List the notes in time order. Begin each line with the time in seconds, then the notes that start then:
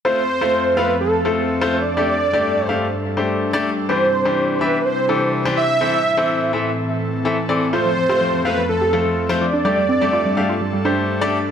0.05 F2 F3 A3 C4 F4 A4 C5
0.41 A3 C4 F4 C5
0.77 A3 C4 F4 B4 F5
1.01 A4
1.25 A3 C4 F4 A4
1.61 A3 C4 F4 C5
1.73 D5
1.97 G2 G3 A3 D4 G4 D5
2.33 A3 D4 G4 D5
2.67 A3 D4 G4 C5 F5
3.17 A3 D4 G4 C5
3.53 A3 D4 G4 D5
3.89 C3 E3 D4 E4 G4 C5
4.25 E3 D4 G4 C5
4.61 E3 D4 G4 B4 E5
4.85 C5
5.09 E3 D4 G4 A4
5.45 E3 D4 G4 C5
5.57 E5
5.81 A2 E3 C4 A4 C5
6.17 E3 C4 A4 C5
6.53 E3 C4 A4 E5
7.25 E3 C4 A4 E5
7.49 E3 C4 A4 D5
7.73 F2 F3 A3 C4 F4 C5
7.85 F3
7.97 F3
8.09 A3 C4 F4 G4 C5
8.21 F3
8.33 F3
8.45 A3 C4 F4 B4 F5
8.57 F3
8.69 F3 A4
8.81 G4
8.93 F3 A3 C4 F4 A4
9.05 F3
9.29 F3 A3 C4 F4 C5
9.41 F3 D5
9.53 D4
9.65 G2 G3 A3 D4 G4 A4 D5
9.77 G3
9.89 C4
10.01 G3 A3 D4 G4 D5
10.13 F4
10.25 G3
10.37 G3 A3 D4 G4 F5
10.49 F4
10.61 G3
10.73 G3
10.85 A3 D4 G4 C5
11.21 A3 D4 G4 D5